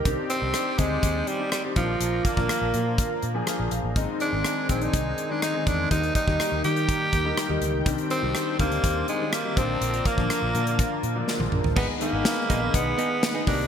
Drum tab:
CC |----------------|----------------|----------------|----------------|
HH |x-x-x-x-x-x-x-x-|x-x-x-x-x-x-x-x-|x-x-x-xxx-x-x-x-|xxx-x-xxx-x-x-x-|
SD |----r-------r---|----r-------r---|----r-------r---|----r-------r---|
T1 |----------------|----------------|----------------|----------------|
T2 |----------------|----------------|----------------|----------------|
FT |----------------|----------------|----------------|----------------|
BD |o-----o-o-----o-|--oo----o-------|o-----o-o-----o-|o-oo----o-o-----|

CC |----------------|----------------|x---------------|
HH |xxx-x-xxx-x-x-x-|xxx-x-xxx-x-----|--x-x-x-x-x-x-o-|
SD |----r-------r---|----r-------o---|----o-------o---|
T1 |----------------|-------------o--|----------------|
T2 |----------------|--------------o-|----------------|
FT |----------------|---------------o|----------------|
BD |o-----o-o-----o-|--oo----o-------|o-----o-o-----o-|